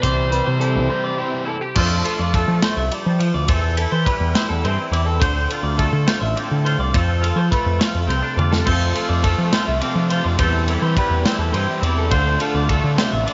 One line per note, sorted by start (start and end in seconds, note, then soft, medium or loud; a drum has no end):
0.00 0.40 C2 loud
0.00 0.32 E3 medium
0.00 0.31 G3 medium
0.00 1.43 C5 medium
0.00 0.30 D5 medium
0.00 kick medium
0.00 closed hi-hat medium
0.04 0.89 C3 medium
0.04 0.32 G3 medium
0.04 0.32 C4 medium
0.04 0.31 G4 medium
0.30 0.59 E3 medium
0.30 0.60 G3 medium
0.30 1.75 G3 medium
0.30 0.60 C4 medium
0.30 0.61 G4 medium
0.30 0.46 B4 medium
0.30 closed hi-hat medium
0.46 0.78 C3 medium
0.46 0.60 C5 medium
0.60 0.89 E3 medium
0.60 0.89 G3 medium
0.60 0.89 C4 medium
0.60 1.17 E4 medium
0.60 0.88 G4 medium
0.60 0.89 A4 medium
0.60 closed hi-hat medium
0.76 0.88 C2 loud
0.89 1.73 C3 medium
0.89 1.17 E3 medium
0.89 1.17 G3 medium
0.89 1.18 C4 medium
0.89 1.18 G4 medium
0.89 1.03 C5 medium
1.04 1.19 D5 medium
1.18 1.56 E3 medium
1.18 1.56 G3 medium
1.18 1.56 C4 medium
1.18 1.44 E4 medium
1.18 1.56 G4 medium
1.18 1.47 C5 medium
1.45 1.61 E4 medium
1.45 1.61 A4 medium
1.61 1.76 G4 soft
1.61 1.76 G4 medium
1.75 2.00 F2 loud
1.75 3.18 F3 medium
1.75 2.34 A3 soft
1.75 3.45 D4 medium
1.75 2.03 F4 medium
1.75 2.35 A4 medium
1.75 2.05 C5 medium
1.75 kick loud
1.75 crash loud
2.04 3.45 F4 medium
2.04 2.19 A4 medium
2.04 ride medium
2.19 2.43 F2 medium
2.19 2.34 D5 medium
2.34 2.62 A3 medium
2.34 2.63 A4 medium
2.34 3.48 A4 medium
2.34 kick medium
2.34 ride medium
2.48 2.60 F3 medium
2.62 2.91 A3 medium
2.62 2.77 C5 medium
2.62 snare loud
2.62 ride medium
2.77 2.89 C2 medium
2.77 2.91 E5 medium
2.91 3.20 G3 medium
2.91 3.20 D5 medium
2.91 ride medium
3.06 3.30 F3 medium
3.19 3.47 F3 medium
3.19 3.34 C5 medium
3.19 ride medium
3.34 3.46 D2 medium
3.34 3.49 D5 medium
3.48 3.85 E2 loud
3.48 4.62 E3 medium
3.48 4.05 A4 medium
3.48 3.77 C5 loud
3.48 kick loud
3.48 ride loud
3.77 4.34 E4 medium
3.77 3.92 A4 medium
3.77 ride medium
3.91 4.04 E3 medium
3.91 4.06 C5 medium
4.05 5.21 G3 medium
4.05 5.18 B4 medium
4.05 4.34 B4 medium
4.05 kick medium
4.05 ride medium
4.20 4.32 E2 loud
4.35 4.91 E4 medium
4.35 4.49 C5 medium
4.35 snare loud
4.35 ride loud
4.49 4.62 E2 medium
4.49 4.63 A4 medium
4.64 4.76 G2 medium
4.64 5.18 E3 medium
4.64 6.36 C4 medium
4.64 4.92 C5 medium
4.64 ride medium
4.91 5.22 E2 medium
4.91 5.21 E4 medium
4.91 5.06 D5 medium
4.91 ride medium
5.06 5.20 A4 medium
5.20 5.46 D2 loud
5.20 6.93 D3 medium
5.20 5.49 C5 medium
5.20 5.78 C5 medium
5.20 kick loud
5.20 ride medium
5.49 6.07 F4 medium
5.49 5.63 A4 medium
5.49 ride medium
5.63 5.88 D2 medium
5.63 5.78 D5 medium
5.78 7.51 A3 medium
5.78 6.07 A4 medium
5.78 6.94 A4 medium
5.78 kick medium
5.78 ride medium
5.93 6.05 D3 medium
6.07 6.65 F4 medium
6.07 6.21 C5 medium
6.07 snare loud
6.07 ride medium
6.21 6.34 A1 medium
6.21 6.36 E5 medium
6.36 6.94 A2 medium
6.36 8.06 C4 soft
6.36 6.64 D5 medium
6.36 ride medium
6.51 6.75 D3 medium
6.65 7.21 F4 medium
6.65 6.79 C5 medium
6.65 ride medium
6.78 6.91 C2 medium
6.78 6.95 D5 medium
6.94 7.31 F2 loud
6.94 8.63 F3 medium
6.94 7.52 A4 medium
6.94 7.22 C5 medium
6.94 kick loud
6.94 ride medium
7.21 7.79 F4 medium
7.21 7.37 A4 medium
7.21 ride medium
7.36 7.48 F3 medium
7.36 7.51 C5 medium
7.51 9.23 A3 medium
7.51 8.65 A4 soft
7.51 7.79 B4 medium
7.51 kick medium
7.51 ride medium
7.66 7.78 F2 medium
7.79 8.36 F4 medium
7.79 7.94 C5 medium
7.79 snare loud
7.79 ride medium
7.94 8.07 F2 medium
7.94 8.08 A4 medium
8.07 8.20 C2 medium
8.07 8.62 C3 medium
8.07 8.22 C4 medium
8.07 8.37 C5 medium
8.07 ride medium
8.22 8.66 D4 soft
8.37 8.61 F2 medium
8.37 8.63 F4 medium
8.37 8.52 D5 medium
8.37 high tom medium
8.51 8.66 A4 medium
8.51 snare medium
8.64 8.91 F2 loud
8.64 10.35 F3 medium
8.64 8.95 F3 medium
8.64 8.95 A3 medium
8.64 8.95 C4 medium
8.64 8.95 F4 loud
8.64 9.24 A4 medium
8.64 8.95 C5 loud
8.64 kick loud
8.64 crash medium
8.94 9.22 F3 medium
8.94 9.22 A3 medium
8.94 9.23 C4 medium
8.94 9.53 F4 medium
8.94 9.23 F4 medium
8.94 9.09 A4 medium
8.94 ride medium
9.09 9.34 F2 medium
9.09 9.24 D5 medium
9.23 9.52 F3 medium
9.23 9.52 A3 medium
9.23 10.96 A3 medium
9.23 9.52 C4 medium
9.23 9.52 F4 medium
9.23 9.52 A4 medium
9.23 10.40 A4 medium
9.23 kick medium
9.23 ride medium
9.38 9.50 F3 medium
9.52 9.81 F3 medium
9.52 9.81 A3 medium
9.52 9.82 C4 medium
9.52 9.82 F4 medium
9.52 10.10 F4 medium
9.52 9.66 C5 medium
9.52 snare loud
9.52 ride medium
9.66 9.80 C2 medium
9.66 9.80 E5 medium
9.81 10.36 C3 medium
9.81 10.10 F3 medium
9.81 10.10 A3 medium
9.81 9.98 C4 soft
9.81 10.10 C4 medium
9.81 10.09 F4 medium
9.81 10.09 D5 medium
9.81 ride medium
9.95 10.20 F3 medium
9.95 10.40 D4 soft
10.09 10.37 F3 medium
10.09 10.38 A3 medium
10.09 10.38 C4 medium
10.09 10.38 F4 medium
10.09 10.36 F4 medium
10.09 10.24 C5 medium
10.09 ride medium
10.24 10.37 F2 medium
10.24 10.39 D5 medium
10.38 10.75 E2 loud
10.38 10.67 E3 medium
10.38 11.52 E3 medium
10.38 10.67 G3 medium
10.38 10.67 C4 loud
10.38 10.67 G4 medium
10.38 10.97 A4 medium
10.38 10.68 C5 loud
10.38 kick loud
10.38 ride medium
10.68 10.96 E3 medium
10.68 10.96 G3 medium
10.68 10.97 C4 medium
10.68 11.25 E4 medium
10.68 10.97 G4 medium
10.68 10.81 A4 medium
10.68 ride medium
10.82 10.94 E3 medium
10.82 10.96 C5 medium
10.97 11.25 E3 medium
10.97 12.12 G3 medium
10.97 11.25 G3 medium
10.97 11.25 C4 medium
10.97 11.24 G4 medium
10.97 11.24 B4 medium
10.97 12.09 B4 medium
10.97 kick medium
10.97 ride medium
11.10 11.23 E2 loud
11.25 11.55 E3 medium
11.25 11.55 G3 medium
11.25 11.55 C4 medium
11.25 11.80 E4 medium
11.25 11.54 G4 medium
11.25 11.39 C5 medium
11.25 snare loud
11.25 ride medium
11.38 11.51 E2 medium
11.38 11.53 A4 medium
11.52 11.65 G2 medium
11.52 12.08 E3 medium
11.52 11.82 E3 medium
11.52 11.82 G3 medium
11.52 13.33 C4 medium
11.52 11.82 C5 medium
11.52 ride medium
11.56 11.82 C4 medium
11.56 11.81 G4 medium
11.81 12.12 E2 medium
11.81 12.10 E3 medium
11.81 12.11 G3 medium
11.81 12.11 C4 medium
11.81 12.11 E4 medium
11.81 12.11 G4 medium
11.81 11.98 D5 medium
11.81 ride medium
11.98 12.12 A4 medium
12.09 12.36 D2 loud
12.09 13.24 D3 medium
12.09 12.40 D3 medium
12.09 12.39 A3 medium
12.09 12.39 D4 medium
12.09 12.38 F4 loud
12.09 12.68 C5 medium
12.09 12.40 C5 medium
12.09 kick loud
12.09 ride medium
12.39 12.68 D3 medium
12.39 12.69 A3 medium
12.39 12.69 D4 medium
12.39 12.69 F4 medium
12.39 13.33 F4 medium
12.39 12.55 A4 medium
12.39 ride medium
12.54 12.79 D2 medium
12.54 12.69 D5 medium
12.68 12.97 D3 medium
12.68 13.33 A3 medium
12.68 12.97 A3 medium
12.68 12.97 D4 medium
12.68 12.96 F4 medium
12.68 13.33 A4 medium
12.68 12.99 A4 medium
12.68 kick medium
12.68 ride medium
12.84 12.96 D3 medium
12.96 13.26 C3 medium
12.96 13.26 D3 medium
12.96 13.25 A3 medium
12.96 13.26 D4 medium
12.96 13.27 F4 medium
12.96 13.12 C5 medium
12.96 snare loud
12.96 ride medium
13.12 13.25 A1 medium
13.12 13.26 E5 medium
13.26 13.33 D3 medium
13.26 13.33 A3 medium
13.26 13.33 D4 medium
13.26 13.33 F4 medium
13.26 13.33 D5 medium
13.26 ride medium